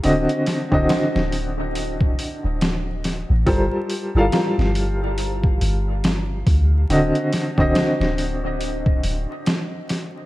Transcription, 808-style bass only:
X:1
M:4/4
L:1/16
Q:"Swing 16ths" 1/4=70
K:Dphr
V:1 name="808-style bass" clef=bass
D,,, z2 D,,, z D,,,4- D,,, z D,,,4 A,,, | G,,, z2 G,,, z G,,,4- G,,, G,,,4 D,,2 | D,,, z2 D,,, z D,,,4- D,,, D,,, z4 z |]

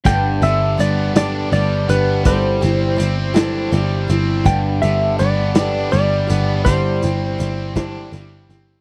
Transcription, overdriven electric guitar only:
X:1
M:6/8
L:1/8
Q:3/8=55
K:C
V:1 name="Overdriven electric guitar"
G,, D, B, D G, B, | G, C C D G, C | G,, D, B, D G, B, | G, C C D G, C |]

